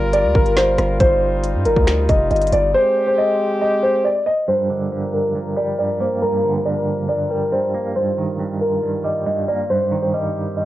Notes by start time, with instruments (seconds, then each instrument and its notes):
Already playing: 808-style bass G1, brass ensemble G3 F4 A#4, grand piano D5
0.13 grand piano D5, closed hi-hat
0.24 808-style bass D2
0.35 808-style bass G1, grand piano A#4, kick
0.46 closed hi-hat
0.57 grand piano C5, finger snap, snare, closed hi-hat
0.78 808-style bass G1, cross-stick, closed hi-hat
1.00 808-style bass G1, brass ensemble D#4, grand piano C5, kick, closed hi-hat
1.44 closed hi-hat
1.54 808-style bass G2
1.65 808-style bass G1, grand piano A#4, closed hi-hat
1.76 808-style bass D2, kick
1.87 finger snap, snare, closed hi-hat
2.09 808-style bass F1, grand piano D#5, kick, closed hi-hat
2.31 808-style bass G1, grand piano D#5, closed hi-hat
2.36 closed hi-hat
2.41 closed hi-hat
2.47 closed hi-hat
2.52 808-style bass G1, grand piano D5, closed hi-hat
2.74 brass ensemble G#3 C4 G4, grand piano C5
3.07 grand piano C5
3.18 grand piano D#5
3.61 grand piano D#5
3.83 grand piano C5
4.04 grand piano D5
4.26 grand piano D#5
4.48 clean electric guitar G2, brass ensemble F3 G3 A#4, grand piano C5, closed hi-hat
4.70 clean electric guitar D3
4.92 clean electric guitar G2, closed hi-hat
5.13 grand piano A#4, closed hi-hat
5.35 clean electric guitar G2, closed hi-hat
5.56 clean electric guitar G3, grand piano D5, closed hi-hat
5.78 clean electric guitar G2, grand piano D5, closed hi-hat
5.84 closed hi-hat
5.89 closed hi-hat
5.95 closed hi-hat
6.00 clean electric guitar A#3, grand piano C5, closed hi-hat
6.22 clean electric guitar G2, grand piano A#4, closed hi-hat
6.44 clean electric guitar D3
6.65 clean electric guitar G2, grand piano D5, closed hi-hat
6.87 closed hi-hat
7.09 clean electric guitar G2, grand piano D5, closed hi-hat
7.30 clean electric guitar G3, grand piano A#4
7.41 closed hi-hat
7.52 clean electric guitar G2, grand piano C5, closed hi-hat
7.74 clean electric guitar A#3, closed hi-hat
7.96 clean electric guitar G2, brass ensemble D#3 F4, grand piano C5, closed hi-hat
8.18 clean electric guitar D#3
8.39 clean electric guitar G2, closed hi-hat
8.61 grand piano A#4, closed hi-hat
8.83 clean electric guitar G2, closed hi-hat
9.04 clean electric guitar G3, grand piano D#5, closed hi-hat
9.26 clean electric guitar G2, grand piano D#5, closed hi-hat
9.32 closed hi-hat
9.37 closed hi-hat
9.43 closed hi-hat
9.48 clean electric guitar A#3, grand piano D5, closed hi-hat
9.70 clean electric guitar G2, brass ensemble D#3 C4 G4, grand piano C5
9.92 clean electric guitar D#3
10.02 grand piano C5
10.13 clean electric guitar G3, grand piano D#5
10.57 grand piano D#5, reverse cymbal